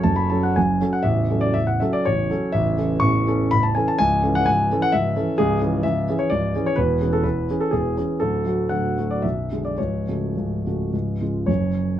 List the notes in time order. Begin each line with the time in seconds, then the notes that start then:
Already playing: F#1 F#2 F#3 C#4 A4 C#5
0.04 F#1 F#2 A5
0.16 B5
0.30 F#3 C#4 A4 A5
0.43 F#5
0.56 F#1 F#2 G#5
0.81 F#3 C#4 A4
0.93 F#5
1.03 A0 A1 E5
1.30 F#3 C#4 A4
1.41 D5
1.54 A0 A1 E5
1.67 F#5
1.80 F#3 C#4 A4 E5
1.93 D5
2.05 A0 A1 C#5
2.30 F#3 C#4 A4
2.52 A0 A1 E5
2.77 E3 C#4 A4
3.00 A0 A1 C#6
3.27 E3 C#4 A4
3.51 A0 A1 B5
3.63 A5
3.75 E3 C#4 A4 G#5
3.88 A5
3.99 C#1 C#2 G#5
4.23 E3 C#4 A4
4.35 F#5
4.46 C#1 C#2 G#5
4.71 E3 C#4 A4
4.82 F#5
4.92 C#1 C#2 E5
5.16 E3 C#4 A4
5.38 C#1 C#2 G#4
5.61 E3 C#4 G#4
5.83 C#1 C#2 E5
6.09 E3 C#4 G#4
6.19 C#5
6.30 C#1 C#2 D5
6.55 E3 C#4 G#4
6.66 C#5
6.76 E1 E2 B4
7.01 E3 C#4 G#4
7.13 A4
7.23 E1 E2 B4
7.50 E3 C#4 G#4
7.61 A4
7.71 E1 E2 G#4
7.97 E3 C#4 G#4
8.20 D1 D2 A4
8.46 F#3 A3 F#4
8.69 D1 D2 F#5
8.98 F#3 A3 F#4
9.11 D5
9.22 B0 B1 E5
9.52 D3 G#3 G#4
9.65 D5
9.78 C#1 C#2 C#5
10.08 C#3 A3 F#4
10.37 C#1 C#2
10.66 C#3 A3 F#4
10.93 C#1 C#2
11.21 C#3 G#3 F4
11.46 F#1 F#2 C#5